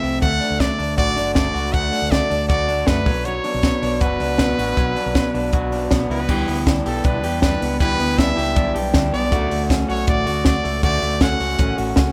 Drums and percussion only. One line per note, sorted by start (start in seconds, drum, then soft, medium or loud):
0.04 open hi-hat medium
0.22 kick loud
0.22 hi-hat pedal medium
0.22 ride medium
0.41 open hi-hat medium
0.60 kick loud
0.60 snare loud
0.60 hi-hat pedal medium
0.60 ride medium
0.80 open hi-hat medium
0.98 kick loud
0.98 hi-hat pedal medium
0.98 ride medium
1.17 open hi-hat medium
1.35 kick loud
1.35 snare loud
1.35 hi-hat pedal medium
1.35 ride medium
1.56 open hi-hat medium
1.74 kick loud
1.74 hi-hat pedal medium
1.74 ride medium
1.93 open hi-hat medium
2.12 kick loud
2.12 snare loud
2.12 hi-hat pedal medium
2.12 ride medium
2.31 open hi-hat medium
2.49 kick loud
2.49 hi-hat pedal medium
2.49 ride medium
2.69 open hi-hat medium
2.87 kick loud
2.87 snare loud
2.87 hi-hat pedal medium
2.87 ride medium
3.06 kick loud
3.06 open hi-hat medium
3.25 hi-hat pedal medium
3.25 ride medium
3.44 open hi-hat medium
3.63 kick loud
3.63 snare loud
3.63 hi-hat pedal medium
3.63 ride medium
3.83 open hi-hat medium
4.01 kick loud
4.01 hi-hat pedal medium
4.01 ride medium
4.20 open hi-hat medium
4.38 kick loud
4.38 snare loud
4.38 hi-hat pedal medium
4.38 ride medium
4.59 open hi-hat medium
4.77 kick loud
4.77 hi-hat pedal medium
4.77 ride medium
4.96 open hi-hat medium
5.15 kick loud
5.15 snare loud
5.15 hi-hat pedal medium
5.15 ride medium
5.35 open hi-hat medium
5.53 kick loud
5.53 hi-hat pedal medium
5.53 ride medium
5.72 open hi-hat medium
5.91 kick loud
5.91 snare loud
5.91 hi-hat pedal medium
5.91 ride medium
6.11 open hi-hat medium
6.29 kick loud
6.29 crash medium
6.48 open hi-hat medium
6.67 kick loud
6.67 snare loud
6.67 hi-hat pedal medium
6.67 ride medium
6.86 open hi-hat medium
7.04 kick loud
7.04 hi-hat pedal medium
7.04 ride medium
7.24 open hi-hat medium
7.42 kick loud
7.42 snare loud
7.42 hi-hat pedal medium
7.42 ride medium
7.62 open hi-hat medium
7.80 kick loud
7.80 hi-hat pedal medium
7.80 ride medium
8.00 open hi-hat medium
8.19 kick loud
8.19 snare loud
8.19 hi-hat pedal medium
8.19 ride medium
8.38 open hi-hat medium
8.56 kick loud
8.56 hi-hat pedal medium
8.56 ride medium
8.76 open hi-hat medium
8.94 kick loud
8.94 snare loud
8.94 hi-hat pedal medium
8.94 ride medium
9.14 open hi-hat medium
9.32 kick loud
9.32 hi-hat pedal medium
9.32 ride medium
9.51 open hi-hat medium
9.70 kick loud
9.70 snare loud
9.70 hi-hat pedal medium
9.70 ride medium
9.90 open hi-hat medium
10.07 kick loud
10.07 hi-hat pedal medium
10.07 ride medium
10.27 open hi-hat medium
10.45 kick loud
10.45 snare loud
10.45 hi-hat pedal medium
10.45 ride medium
10.65 open hi-hat medium
10.83 kick loud
10.83 hi-hat pedal medium
10.83 ride medium
11.02 open hi-hat medium
11.20 kick loud
11.20 snare loud
11.20 hi-hat pedal medium
11.20 ride medium
11.40 open hi-hat medium
11.58 kick loud
11.58 hi-hat pedal medium
11.58 ride medium
11.78 open hi-hat medium
11.96 kick loud
11.96 snare loud
11.96 hi-hat pedal medium
11.96 ride medium